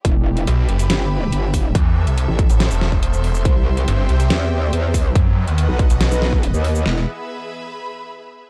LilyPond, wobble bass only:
\new Staff \with { instrumentName = "Wobble bass" } { \clef bass \time 4/4 \key e \minor \tempo 4 = 141 e,,4 r4 g,,4 g,,4 | r4 r16 a,,8 r2 r16 | c,4 r4 e,4 e,4 | r4 r16 b,,8 r8 b,,4 dis,8. |
e,,8 r2. r8 | }